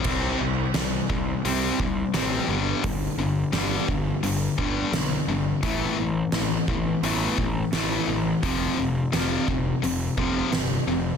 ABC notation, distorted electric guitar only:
X:1
M:4/4
L:1/8
Q:1/4=86
K:Clyd
V:1 name="Distorted electric guitar" clef=bass
[C,G,C] [C,G,] [C,G,] [C,G,] [C,G,C] [C,G,] [C,G,C] [G,,D,G,] | [G,,D,] [G,,D,] [G,,D,G,] [G,,D,] [G,,D,] [G,,D,G,] [G,,D,] [G,,D,] | [A,,E,A,] [A,,E,] [A,,E,] [A,,E,] [A,,E,A,] [A,,E,] [A,,E,A,] [A,,E,] | [=F,,C,=F,] [F,,C,] [F,,C,F,] [F,,C,] [F,,C,] [F,,C,F,] [F,,C,] [F,,C,] |]